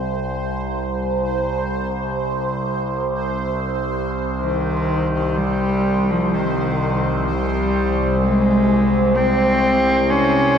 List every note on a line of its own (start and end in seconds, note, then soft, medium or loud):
0.00 10.58 C2 medium
0.00 10.58 C5 medium
4.42 5.38 D#3 medium
5.37 6.12 G3 medium
6.10 6.35 F3 medium
6.33 7.30 D#3 medium
7.28 8.21 G3 medium
8.22 9.17 G#3 loud
9.16 10.12 C4 loud
10.10 10.58 C#4 loud